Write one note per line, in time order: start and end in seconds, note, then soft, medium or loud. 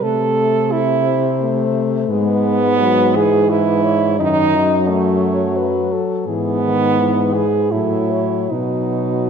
0.02 2.06 C3 medium
0.02 1.15 A3 medium
0.02 0.73 A4 loud
0.02 2.10 C5 medium
0.72 1.76 E4 loud
1.41 2.12 A3 medium
2.09 4.22 G#2 medium
2.09 2.78 G#3 medium
2.09 3.18 B3 loud
2.09 3.49 B4 medium
2.79 3.17 F#3 medium
3.15 4.19 E3 medium
3.15 3.51 G#4 loud
3.49 4.19 E4 loud
3.49 3.86 B4 medium
3.85 4.21 C#5 medium
4.19 6.01 F#2 medium
4.19 4.57 D#3 medium
4.19 4.90 D#4 loud
4.19 4.91 D#5 medium
4.56 6.28 F#3 medium
4.89 5.92 A3 medium
4.89 5.59 C#5 medium
5.58 5.94 B4 medium
5.92 6.29 A4 medium
6.27 7.73 G#2 medium
6.27 6.63 E3 medium
6.27 7.36 B3 loud
6.27 6.73 G#4 medium
6.63 7.00 D#3 medium
6.99 7.46 E3 medium
6.99 7.68 B4 medium
7.34 7.73 G#4 medium
7.71 8.52 A2 medium
7.71 8.48 F#3 medium
7.71 8.52 E4 medium
7.71 8.12 A4 medium
8.10 8.54 C#5 medium
8.50 9.30 B2 medium
8.50 9.30 F#3 medium
8.50 9.30 D#4 medium
8.50 9.30 B4 medium